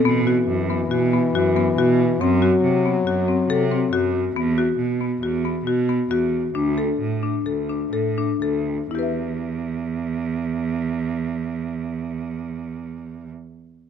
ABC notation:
X:1
M:5/4
L:1/8
Q:1/4=134
K:Em
V:1 name="Marimba"
B, F2 B, F B, F B, F2 | C F2 B, F C A C F2 | B, F2 B, F B, F B, F2 | D A2 D A D A D A2 |
[EGBe]8- [EGBe]2- | [EGBe]8- [EGBe]2 |]
V:2 name="French horn" clef=bass
E,8- E,2 | F,8- F,2 | z8 z2 | z8 z2 |
z8 z2 | z8 z2 |]
V:3 name="Cello" clef=bass
B,,2 F,,2 B,,2 F,,2 B,,2 | F,,2 C,2 F,,2 C,2 F,,2 | E,,2 B,,2 E,,2 B,,2 E,,2 | D,,2 A,,2 D,,2 A,,2 D,,2 |
E,,8- E,,2- | E,,8- E,,2 |]